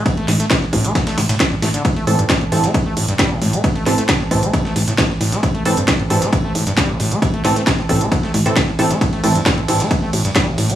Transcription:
<<
  \new Staff \with { instrumentName = "Synth stab" } { \time 4/4 \key a \minor \tempo 4 = 134 r1 | r8 <e c' a'>16 r8. <e c' a'>16 r2 r16 | r8 <e c' a'>16 r8. <e c' a'>16 r2 r16 | r8 <e c' a'>16 r8. <e c' a'>16 r2 r16 |
r8 <e c' a'>16 r8. <e c' a'>16 r4 <e c' a'>16 r8 <e c' a'>16 r16 | r8 <e c' a'>16 r8. <e c' a'>16 r2 r16 | }
  \new Staff \with { instrumentName = "Acid bass" } { \clef bass \time 4/4 \key a \minor b,16 a16 a,,16 a16 c16 a,16 a,16 a16 b,16 a16 a,16 a,16 a,16 g,16 a16 d16 | a,16 a16 a,16 g,16 g16 a,16 g,16 a16 a,16 a16 a,16 g,16 g16 a,16 a,16 a16 | b,16 a16 a,,16 a16 c16 a,16 a,16 a16 b,16 a16 a,,16 a,16 c16 a,16 a,16 a16 | a,16 a16 a,16 g,16 g16 a,16 g,16 a16 a,16 a16 a,16 g,16 g16 a,16 a,16 a16 |
b,16 a16 a,,16 a16 c16 a,16 a,16 a16 b,16 a16 a,,16 a,16 c16 a,16 a,16 a16 | a,16 a16 a,16 g,16 g16 a,16 g,16 a16 a,16 a16 a,16 g,16 g16 a,16 a,16 a16 | }
  \new Staff \with { instrumentName = "Analog synth bass" } { \clef bass \time 4/4 \key a \minor r8 a,,8 r8 a,,8 r8 a,,8 r8 a,,8 | r8 a,,8 r8 a,,8 r8 a,,8 r8 a,,8 | r8 a,,8 r8 a,,8 r8 a,,8 r8 a,,8 | r8 a,,8 r8 a,,8 r8 a,,8 r8 a,,8 |
r8 a,,8 r8 a,,8 r8 a,,8 r8 a,,8 | r8 a,,8 r8 a,,8 r8 a,,8 r8 a,,8 | }
  \new DrumStaff \with { instrumentName = "Drums" } \drummode { \time 4/4 <hh bd cymr>16 cymr16 <hho cymr sn>16 <hh sn>16 <hh bd cymr sn>16 sn16 <hho bd cymr>16 hh16 <hh bd cymr sn>16 <cymr sn>16 <hho cymr sn>16 <hh cymr sn>16 <hh bd cymr sn>16 sn16 <hho cymr sn>16 <hh sn>16 | <hh bd cymr>16 cymr16 <hho cymr>16 hh16 <hh bd cymr sn>16 cymr16 <hho cymr sn>16 <hh sn>16 <hh bd cymr>8 <hho cymr>16 <hh sn>16 <hh bd cymr sn>8 <hho cymr sn>16 hh16 | <hh bd cymr>16 cymr16 <hho cymr sn>16 <hh sn>16 <hh bd cymr sn>16 sn16 <hho bd cymr>16 hh16 <hh bd cymr>16 sn16 <hho cymr sn>16 <hh sn>16 <hh bd cymr sn>16 sn16 <hho cymr sn>16 <hh sn>16 | <hh bd cymr>16 cymr16 <hho cymr>16 hh16 <hh bd cymr sn>16 cymr16 <hho cymr sn>16 <hh sn>16 <hh bd cymr>8 <hho cymr>16 <hh sn>16 <hh bd cymr sn>8 <hho cymr sn>16 hh16 |
<hh bd cymr>16 cymr16 <hho cymr sn>16 <hh sn>16 <hh bd cymr sn>16 sn16 <hho bd cymr>16 hh16 <hh bd cymr>16 sn16 <hho cymr sn>16 <hh sn>16 <hh bd cymr sn>16 sn16 <hho cymr sn>16 <hh sn>16 | <hh bd cymr>16 cymr16 <hho cymr>16 hh16 <hh bd cymr sn>16 cymr16 <hho cymr sn>16 <hh sn>16 <hh bd cymr>8 <hho cymr>16 <hh sn>16 <hh bd cymr sn>8 <hho cymr sn>16 hh16 | }
>>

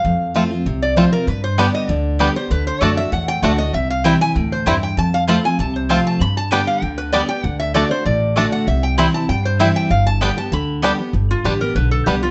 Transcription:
<<
  \new Staff \with { instrumentName = "Resonator guitar played with a steel bar" } { \time 4/4 \key g \mixolydian \tempo 4 = 195 f''2 r8 d''8 c''8 bes'8 | b'8 c''8 d''8 ees''8 d''4. c''8 | b'8 c''8 d''8 e''8 fis''8 g''8 fis''8 ees''8 | e''8 f''8 g''8 aes''8 g''8 c''8 e''8 g''8 |
a''8 f''8 b''8 aes''8 a''8 c''8 f''8 a''8 | b''8 a''8 g''8 f''8 g''8 b'8 d''8 g''8 | fis''8 e''8 d''8 c''8 d''4 r8 fis''8 | e''8 g''8 b''8 a''8 g''8 c''8 e''8 g''8 |
f''8 a''8 g''8 a''8 b''4.~ b''16 r16 | r8 f'8 g'8 bes'8 b'8 a'8 g'8 f'8 | }
  \new Staff \with { instrumentName = "Mandolin" } { \time 4/4 \key g \mixolydian r1 | r4 <b g' d'' g''>8 r4. <b g' d'' g''>8 r8 | r4 <a fis' d'' a''>8 r4. <a fis' d'' a''>8 r8 | r4 <c' e' c'' g''>8 r4. <c' e' c'' g''>8 r8 |
r4 <c' f' c'' a''>8 r4. <c' f' c'' a''>8 r8 | r4 <b g' d'' g''>8 r4. <b g' d'' g''>8 r8 | r4 <a fis' d'' a''>8 r4. <a fis' d'' a''>8 r8 | r4 <c' e' c'' g''>8 r4. <c' e' c'' g''>8 r8 |
r4 <b g' d'' g''>8 r4. <b g' d'' g''>8 r8 | r1 | }
  \new Staff \with { instrumentName = "Five-string banjo" } { \time 4/4 \key g \mixolydian r4 <a c' f'>8 r4. <a c' f'>8 r8 | r4 <g b d'>8 r4. <g b d'>8 r8 | r4 <a d'>8 r4. <a d'>8 r8 | r4 <g c' e'>8 r4. <g c' e'>8 r8 |
r4 <a c' f'>8 r4. <a c' f'>8 r8 | r4 <g b d'>8 r4. <g b d'>8 r8 | r4 <a d'>8 r4. <a d'>8 r8 | r4 <g c' e'>8 r4. <g c' e'>8 r8 |
r4 <g b d'>8 r4. <g b d'>8 r8 | r4 <g b d'>8 r4. <g b d'>8 r8 | }
  \new Staff \with { instrumentName = "Steel-string acoustic guitar" } { \time 4/4 \key g \mixolydian << { r4 <f a c' f'>8 <c' f'>8 r4 <f a c' f'>8 <c' f'>8 | r4 <d g b g'>4 r4 <d g b g'>8 <b g'>8 | r4 <d a d' fis'>8 <d' fis'>8 r4 <d a d' fis'>8 <d' fis'>8 | r4 <e g c' e'>8 <c' e'>8 r2 |
r4 <f a c' f'>8 <c' f'>8 r4 <f a c' f'>4 | r4 <d g b g'>4 r4 <d g b g'>8 <b g'>8 | r4 <d a d' fis'>8 <d' fis'>8 r4 <d a d' fis'>4 | r4 <e g c' e'>8 <c' e'>8 r4 <e g c' e'>4 |
r4 <d g b g'>8 <b g'>8 r4 <d g b g'>8 <b g'>8 | r4 <d g b g'>8 <b g'>8 r4 <d g b g'>8 <b g'>8 | } \\ { f,2 c2 | g,2 d2 | d2 a,2 | c2 a,4 g,4 |
f,2 c2 | g,2 d2 | d2 a,2 | c2 g,2 |
g,2 d2 | g,2 d2 | } >> }
  \new Staff \with { instrumentName = "Upright bass" } { \clef bass \time 4/4 \key g \mixolydian f,2 c,2 | g,2 d,2 | d,4 fis,4 e,4 d,4 | c,2 d,4 e,4 |
f,2 c,2 | g,2 d,2 | d,2 a,,2 | c,2 g,2 |
g,,2 d,2 | g,,4 a,,4 b,,4 c,4 | }
>>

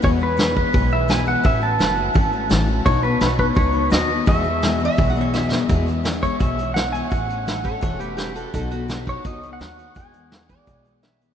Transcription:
<<
  \new Staff \with { instrumentName = "Pedal steel guitar" } { \time 4/4 \key e \major \tempo 4 = 169 cis''8 b'4 b'4 e''8 gis''8 fis''8 | e''8 a''2 r4. | cis''8 b'8 b'8 b'8 cis''4 dis''4 | e''2. r4 |
r4. cis''8 e''4 fis''8 gis''8 | fis''2. r4 | r4. cis''8 dis''8. fis''16 fis''4 | gis''2.~ gis''8 r8 | }
  \new Staff \with { instrumentName = "Resonator guitar played with a steel bar" } { \time 4/4 \key e \major r1 | r1 | r1 | r4 \tuplet 3/2 { r4 e''8~ e''8 fis''8 cis''8 } e''8. r16 |
r1 | r4. <a' cis''>8 <a' cis''>8 <g' b'>8 <g' b'>8 <fis' a'>8 | <fis' a'>8 fis'8. r2 r8. | r4. d''4. e''8. r16 | }
  \new Staff \with { instrumentName = "Steel-string acoustic guitar" } { \time 4/4 \key e \major <e, b, e gis b gis'>8 <e gis b gis'>8 <e, b, e gis b gis'>8 <e gis b gis'>8 <e gis b gis'>8 <e gis b gis'>8 <e, b, e gis b gis'>8 <e gis b gis'>8 | <a, e a cis' fis'>8 <a cis' fis'>8 <a, e a cis' fis'>8 <a cis' fis'>8 <e a cis' fis'>8 <a cis' fis'>8 <a, e a cis' fis'>8 <a cis' fis'>8 | <b, fis b dis' fis'>8 <b dis' fis'>8 <b, fis b dis' fis'>8 <b dis' fis'>8 <fis b dis' fis'>8 <b dis' fis'>8 <b, fis b dis' fis'>8 <b dis' fis'>8 | <e, b, e gis b gis'>8 <e gis b gis'>8 <e, b, e gis b gis'>8 <e gis b gis'>8 <e gis b gis'>8 <e gis b gis'>8 <e, b, e gis b gis'>8 <e gis b gis'>8 |
<e, b, e gis b gis'>8 <e gis b gis'>8 <e gis b gis'>8 <e gis b gis'>8 <e, b, e gis b gis'>8 <e gis b gis'>8 <gis b gis'>8 <e gis b gis'>8 | <a, e a cis' fis'>8 <a cis' fis'>8 <e a cis' fis'>8 <cis' fis'>8 <a, e a cis' fis'>8 <a cis' fis'>8 <e a cis' fis'>8 <a cis' fis'>8 | <b, fis b dis' fis'>8 <b dis' fis'>8 <fis b dis' fis'>8 <b dis' fis'>8 <b, fis b dis' fis'>8 <dis' fis'>8 <fis b dis' fis'>8 <b dis' fis'>8 | <e, b, e gis b gis'>8 <e gis b>8 <e gis b gis'>8 <e gis b gis'>8 <e, b, e gis b gis'>8 <e gis b gis'>8 <e gis b gis'>8 <e gis b gis'>8 | }
  \new Staff \with { instrumentName = "Upright bass" } { \clef bass \time 4/4 \key e \major e,2 b,,2 | a,,4 fis,,4 gis,,4 a,,4 | b,,4 b,,4 cis,4 dis,4 | e,2 b,,2 |
e,2 b,,2 | a,,2 e,,2 | b,,2 cis,4 dis,4 | e,2 b,,2 | }
  \new DrumStaff \with { instrumentName = "Drums" } \drummode { \time 4/4 <hho bd>4 <hho sn>8 bd8 <hho bd>4 sn4 | <hho bd>4 <hho sn>4 <hho bd>4 <hho sn>4 | <hho bd>4 <hho sn>8 bd8 <hho bd>4 <hho sn>4 | <hho bd>4 <hho sn>4 <hho bd>4 sn8 sn8 |
<hh bd>8 hh8 <hh sn>8 <hh bd>8 <hh bd>8 hh8 <hh sn>8 hh8 | <hh bd>8 hh8 <hh sn>8 <hh bd>8 <hh bd>8 hh8 <hh sn>8 hh8 | <hh bd>8 hh8 <hh sn>8 <hh bd>8 <hh bd>8 hh8 <hh sn>8 hh8 | <hh bd>8 hh8 <hh sn>8 <hh bd>8 <hh bd>8 hh8 <hh sn>8 hh8 | }
>>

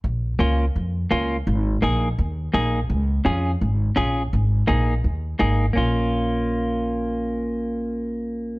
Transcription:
<<
  \new Staff \with { instrumentName = "Clean electric guitar" } { \time 4/4 \key bes \minor \tempo 4 = 168 r4 <bes des' f'>8 r4. <bes des' f'>8 r8 | r4 <bes ees' aes'>8 r4. <bes ees' aes'>8 r8 | r4 <des' f' aes'>8 r4. <des' f' aes'>8 r8 | r4 <bes ees' aes'>8 r4. <bes ees' aes'>8 r8 |
<bes des' f'>1~ | <bes des' f'>1 | }
  \new Staff \with { instrumentName = "Upright bass" } { \clef bass \time 4/4 \key bes \minor bes,,4 des,4 f,4 des,4 | aes,,4 bes,,4 ees,4 bes,,4 | des,4 f,4 aes,,4 bes,,4 | aes,,4 bes,,4 ees,4 aes,,4 |
bes,,1~ | bes,,1 | }
>>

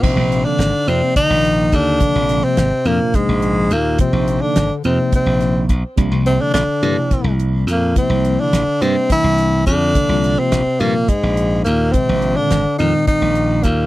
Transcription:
<<
  \new Staff \with { instrumentName = "Tenor saxophone" } { \time 7/8 \key bes \mixolydian \tempo 4 = 106 c'8. d'8. c'8 ees'4 d'8~ | d'8. c'8. bes8 aes4 bes8 | c'8. d'8. c'8 c'4 r8 | r8 c'16 d'16 d'4. r8 bes8 |
c'8. d'8. c'8 e'4 d'8~ | d'8. c'8. bes8 aes4 bes8 | c'8. d'8. ees'8 ees'4 bes8 | }
  \new Staff \with { instrumentName = "Tine electric piano" } { \clef bass \time 7/8 \key bes \mixolydian <c f bes ees'>16 <c f bes c'>4 r16 <c f bes d''>4. r8 | <c f bes d'>16 <c f bes c'>4 r16 <c f bes d'>4. r8 | <c f bes f'>16 <c bes ees'>4 r16 <c f bes ees'>4. r8 | <c f bes d'>16 <c f bes c'>4 r16 <c f bes e'>4. r8 |
<c f bes e'>16 <c f bes e'>4 r16 <c g bes d'>4. r8 | <c f bes d'>16 <c f bes f'>4 r16 <c f bes c'>8 r4. | <bes, ees aes c'>16 <bes, ees aes c'>4 r16 <bes, ees aes c'>4. r8 | }
  \new Staff \with { instrumentName = "Bass clarinet" } { \clef bass \time 7/8 \key bes \mixolydian c8. d8. c8 ees4 d8~ | d8. c8. bes,8 aes,4 bes,8 | c8. d8. c8 c4 r8 | r8 c16 d16 d4. r8 bes,8 |
c8. d8. c8 e4 d8~ | d8. c8. bes,8 aes,4 bes,8 | c8. d8. ees8 ees4 bes,8 | }
  \new Staff \with { instrumentName = "Slap bass" } { \clef bass \time 7/8 \key bes \mixolydian bes,,16 bes,,8 r16 aes,,16 r16 f,16 r8 bes,,8. ees,8 | r16 bes,,8 r16 aes,,16 r16 f,16 r8 bes,,8. ees,8 | r16 bes,,8 r16 aes,,16 r16 f,16 r8 bes,,8. ces,16 r16 | c,16 c,8 r16 bes,,16 r16 g,16 r8 c,8. f,8 |
r16 c,8 r16 bes,,16 r16 g,16 r8 c,8. f,8 | r16 c,8 r16 bes,,16 r16 g,16 r8 bes,,8. ees,8 | r16 bes,,8 r16 aes,,16 r16 f,16 r8 bes,,8. ees,8 | }
  \new DrumStaff \with { instrumentName = "Drums" } \drummode { \time 7/8 <cymc bd>8 hh8 <hh sn>8 hh8 <hh bd sn>8 hh8 <hh bd>8 | <hh bd>8 <hh sn>8 <hh sn>8 hh8 <hh bd sn>8 hh8 hh8 | <hh bd>8 hh8 <hh sn>8 hh8 <hh bd>8 <hh sn>8 <hh bd>8 | <hh bd>8 hh8 <hh sn>8 hh8 <hh bd sn>8 hh8 <hh sn>8 |
<hh bd>8 hh8 <hh sn>8 hh8 <hh bd>8 hh8 <hh bd>8 | <hh bd>8 <hh sn>8 <hh sn>8 hh8 <hh bd>8 hh8 hh8 | <hh bd>8 hh8 <hh sn>8 <hh sn>8 <hh bd>8 hh8 <hh bd sn>8 | }
>>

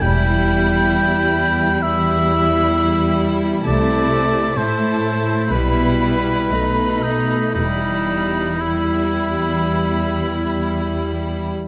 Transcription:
<<
  \new Staff \with { instrumentName = "Violin section" } { \time 4/4 \key e \minor \tempo 4 = 62 b''2 b''2 | a''4 a''4 b''4 b''4 | b''4 b''2. | }
  \new Staff \with { instrumentName = "Oboe" } { \time 4/4 \key e \minor g''2 e''4. r8 | d''4 c''4 b'4. dis'8 | dis'4 e'2~ e'8 r8 | }
  \new Staff \with { instrumentName = "Violin section" } { \time 4/4 \key e \minor e'2 e'2 | e'4 e'4 e'4 dis'4 | e'4 e'2. | }
  \new Staff \with { instrumentName = "Viola section" } { \clef bass \time 4/4 \key e \minor g2 g2 | a4 a4 g4 a4 | g4 g2. | }
  \new Staff \with { instrumentName = "Cello section" } { \clef bass \time 4/4 \key e \minor e,1 | c4 a,4 b,4 b,4 | e,1 | }
  \new Staff \with { instrumentName = "Double bass section" } { \clef bass \time 4/4 \key e \minor e,,4 r2. | c,4 r4 b,,4 b,,4 | e,,4 r2. | }
>>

